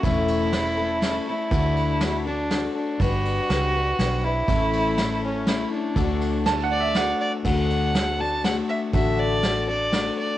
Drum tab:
CC |------|------|------|------|
RD |xxx-x-|xxx-x-|xxx-x-|xxx-x-|
SD |--o-o-|--o-o-|--o-o-|--o-o-|
BD |o-----|o-----|o-----|o-----|

CC |------|x-----|------|
RD |xxx-x-|-xx-x-|x-x-x-|
SD |--o-o-|--o-o-|--o-o-|
BD |o-----|o-----|o-----|